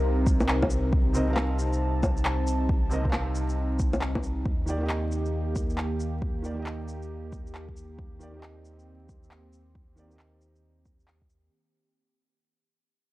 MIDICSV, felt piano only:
0, 0, Header, 1, 2, 480
1, 0, Start_track
1, 0, Tempo, 441176
1, 1007, Time_signature, 4, 2, 24, 8
1, 14279, End_track
2, 0, Start_track
2, 0, Title_t, "Felt piano"
2, 0, Program_c, 0, 0
2, 0, Note_on_c, 0, 48, 75
2, 0, Note_on_c, 0, 60, 70
2, 0, Note_on_c, 0, 70, 70
2, 0, Note_on_c, 0, 77, 84
2, 1206, Note_off_c, 0, 48, 0
2, 1221, Note_off_c, 0, 60, 0
2, 1230, Note_on_c, 0, 48, 74
2, 1236, Note_off_c, 0, 70, 0
2, 1244, Note_on_c, 0, 60, 67
2, 1249, Note_off_c, 0, 77, 0
2, 1256, Note_on_c, 0, 70, 67
2, 1273, Note_on_c, 0, 75, 81
2, 1342, Note_off_c, 0, 48, 0
2, 1359, Note_on_c, 0, 48, 74
2, 1372, Note_off_c, 0, 60, 0
2, 1382, Note_off_c, 0, 70, 0
2, 1388, Note_on_c, 0, 60, 70
2, 1390, Note_off_c, 0, 75, 0
2, 1417, Note_on_c, 0, 70, 67
2, 1448, Note_on_c, 0, 77, 82
2, 3126, Note_off_c, 0, 48, 0
2, 3140, Note_off_c, 0, 60, 0
2, 3150, Note_on_c, 0, 48, 73
2, 3155, Note_off_c, 0, 70, 0
2, 3164, Note_on_c, 0, 60, 65
2, 3170, Note_off_c, 0, 77, 0
2, 3179, Note_on_c, 0, 70, 66
2, 3193, Note_on_c, 0, 75, 80
2, 3263, Note_off_c, 0, 48, 0
2, 3280, Note_on_c, 0, 48, 77
2, 3293, Note_off_c, 0, 60, 0
2, 3303, Note_off_c, 0, 70, 0
2, 3309, Note_on_c, 0, 60, 67
2, 3310, Note_off_c, 0, 75, 0
2, 3338, Note_on_c, 0, 70, 67
2, 3368, Note_on_c, 0, 77, 82
2, 4090, Note_off_c, 0, 48, 0
2, 4104, Note_off_c, 0, 60, 0
2, 4119, Note_off_c, 0, 70, 0
2, 4134, Note_off_c, 0, 77, 0
2, 5070, Note_on_c, 0, 51, 68
2, 5084, Note_on_c, 0, 58, 64
2, 5099, Note_on_c, 0, 67, 64
2, 5115, Note_on_c, 0, 74, 79
2, 5183, Note_off_c, 0, 51, 0
2, 5199, Note_on_c, 0, 51, 70
2, 5212, Note_off_c, 0, 58, 0
2, 5223, Note_off_c, 0, 67, 0
2, 5229, Note_on_c, 0, 58, 66
2, 5231, Note_off_c, 0, 74, 0
2, 5257, Note_on_c, 0, 67, 67
2, 5284, Note_on_c, 0, 75, 80
2, 6966, Note_off_c, 0, 51, 0
2, 6981, Note_off_c, 0, 58, 0
2, 6988, Note_on_c, 0, 51, 70
2, 6995, Note_off_c, 0, 67, 0
2, 7001, Note_on_c, 0, 58, 66
2, 7009, Note_off_c, 0, 75, 0
2, 7017, Note_on_c, 0, 67, 63
2, 7031, Note_on_c, 0, 74, 78
2, 7101, Note_off_c, 0, 51, 0
2, 7117, Note_on_c, 0, 51, 74
2, 7130, Note_off_c, 0, 58, 0
2, 7142, Note_off_c, 0, 67, 0
2, 7147, Note_on_c, 0, 58, 67
2, 7149, Note_off_c, 0, 74, 0
2, 7175, Note_on_c, 0, 67, 67
2, 7205, Note_on_c, 0, 75, 82
2, 8885, Note_off_c, 0, 51, 0
2, 8900, Note_off_c, 0, 58, 0
2, 8912, Note_on_c, 0, 51, 70
2, 8914, Note_off_c, 0, 67, 0
2, 8926, Note_on_c, 0, 58, 64
2, 8929, Note_off_c, 0, 75, 0
2, 8941, Note_on_c, 0, 67, 66
2, 8955, Note_on_c, 0, 74, 77
2, 9028, Note_off_c, 0, 51, 0
2, 9044, Note_on_c, 0, 51, 73
2, 9056, Note_off_c, 0, 58, 0
2, 9064, Note_off_c, 0, 67, 0
2, 9071, Note_off_c, 0, 74, 0
2, 9072, Note_on_c, 0, 58, 69
2, 9102, Note_on_c, 0, 67, 65
2, 9130, Note_on_c, 0, 75, 79
2, 10809, Note_off_c, 0, 51, 0
2, 10822, Note_off_c, 0, 58, 0
2, 10830, Note_on_c, 0, 51, 69
2, 10837, Note_off_c, 0, 67, 0
2, 10843, Note_on_c, 0, 58, 62
2, 10852, Note_off_c, 0, 75, 0
2, 10857, Note_on_c, 0, 67, 60
2, 10872, Note_on_c, 0, 74, 78
2, 10946, Note_off_c, 0, 51, 0
2, 10962, Note_on_c, 0, 51, 73
2, 10975, Note_off_c, 0, 58, 0
2, 10982, Note_off_c, 0, 67, 0
2, 10990, Note_off_c, 0, 74, 0
2, 10991, Note_on_c, 0, 58, 66
2, 11023, Note_on_c, 0, 67, 67
2, 11051, Note_on_c, 0, 75, 80
2, 12498, Note_off_c, 0, 51, 0
2, 12512, Note_off_c, 0, 58, 0
2, 12528, Note_off_c, 0, 67, 0
2, 12542, Note_off_c, 0, 75, 0
2, 14279, End_track
0, 0, End_of_file